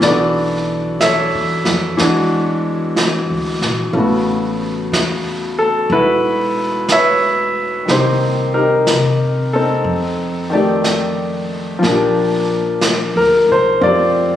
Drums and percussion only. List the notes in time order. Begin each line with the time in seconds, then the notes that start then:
0.02 brush sweep, snare
1.01 brush sweep, snare, hi-hat pedal
1.65 snare
1.98 brush sweep, snare
2.97 brush sweep, snare, hi-hat pedal
3.62 snare
3.95 brush sweep
4.93 brush sweep, snare, hi-hat pedal
5.91 brush sweep
6.89 brush sweep, snare, hi-hat pedal
7.88 brush sweep, snare
8.87 brush sweep, snare, hi-hat pedal
9.85 brush sweep
10.84 brush sweep, snare, hi-hat pedal
11.84 brush sweep, snare
12.81 brush sweep, snare, hi-hat pedal
13.80 brush sweep